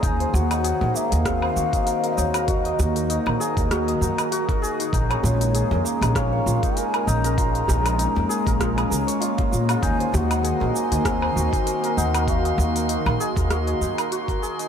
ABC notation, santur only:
X:1
M:4/4
L:1/16
Q:"Swing 16ths" 1/4=98
K:Ebdor
V:1 name="Santur"
E c G E A B B, E C c G E B B E B | G e E B E B A B G e E B G B A E | E d F E A B B, E D d F E B B E B | F e E B E B A B F e B d F F F F |
E c G E A B B, E C c G E B B E B | G e E B E B A B G e E B G B A E |]